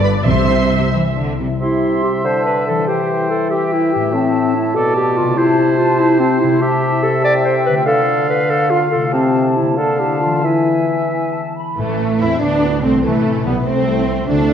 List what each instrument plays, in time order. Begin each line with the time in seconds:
Already playing: double bass section G1, cello section G2, harp G2 A3 B3 G4, viola section D5
0.03 harp F4 D5, violin section B4 B5
0.25 double bass section C2, cello section C3, harp C3, timpani C3, violin section C5 C6, viola section E5
0.48 harp E4
0.93 cello section E3, harp G3
1.16 cello section D3, harp C5
1.39 cello section C3, harp C3 E4
1.46 harp G3
1.51 harp E4
1.55 harp C5
1.60 bassoon C3, clarinet E4, oboe E5, flute section C6
2.03 clarinet G4
2.23 bassoon D3, clarinet C5, flute section A5
2.45 clarinet B4
2.67 harp E3, clarinet A4
2.74 harp G3
2.78 harp E4
2.82 harp C5, flute section G5
2.87 bassoon E3, clarinet G4, oboe C5
3.30 clarinet A4
3.50 clarinet G4, oboe E5, flute section G5
3.73 clarinet E4
3.93 harp A2, clarinet G4
4.00 harp A3
4.04 harp E4
4.08 bassoon A2, harp C5
4.14 clarinet C4, flute section A5
4.55 clarinet E4
4.75 bassoon B2, clarinet A4, oboe D5
4.96 clarinet G4
5.17 harp C3, clarinet F4
5.24 harp A3
5.28 harp E4
5.33 bassoon C3, harp C5
5.37 clarinet E4, oboe C5, flute section A5
5.79 clarinet F4
5.99 clarinet E4
6.20 clarinet C4
6.40 harp C3, clarinet E4
6.48 harp A3
6.52 harp E4
6.57 harp C5
6.61 bassoon C3, clarinet G4, oboe E5, flute section A5
7.03 clarinet A4
7.24 clarinet D5, flute section G5
7.45 clarinet C5
7.66 harp D3, clarinet B4
7.73 harp A3
7.77 harp F4
7.82 harp C5
7.86 bassoon D3, clarinet A4, oboe F5, flute section F5
8.30 clarinet B4
8.50 clarinet A4
8.71 clarinet F4
8.92 harp C3, clarinet A4
8.99 harp A3
9.04 harp E4
9.08 harp C5
9.12 bassoon C3, clarinet C4, flute section A5
9.56 harp D3, clarinet E4
9.64 harp A#3
9.68 harp D4
9.72 harp A#4
9.77 bassoon D3, clarinet A4, oboe F5, flute section A5
10.00 clarinet G4
10.21 clarinet F4
10.25 harp E3
10.30 harp G#3
10.34 harp B3
10.39 harp B4
10.44 bassoon E3, clarinet E4, oboe E5, flute section G#5
11.11 flute section G#5
11.32 flute section A5
11.55 flute section B5
11.77 double bass section A1, harp A2, viola section E3, cello section A3, violin section A3 A4
11.89 harp A3
11.99 harp C4
12.10 harp A4
12.20 double bass section E2, viola section C4, harp C4, cello section E4, violin section E4 E5
12.31 harp C5
12.41 double bass section D2, viola section B3, violin section D4 D5, cello section D4, harp A5
12.52 harp C5
12.63 harp A4
12.74 harp C4
12.83 double bass section C2, viola section A3, harp A3, violin section C4 C5, cello section C4
12.95 harp E3
13.04 double bass section A1, harp C3, viola section E3, violin section A3 A4, cello section A3
13.15 harp A3
13.26 harp E4
13.36 harp A4
13.45 double bass section B1, viola section G3, violin section B3 B4, cello section B3, harp E4
13.57 harp E5
13.66 double bass section C2, viola section A3, violin section C4 C5, cello section C4, harp A5
13.77 harp E5
13.87 harp A4
13.98 harp E4
14.08 harp A3
14.19 harp C4
14.29 double bass section D2, harp D3, viola section A3, cello section D4, violin section D5
14.40 harp A3
14.50 harp F4, violin section A4 F5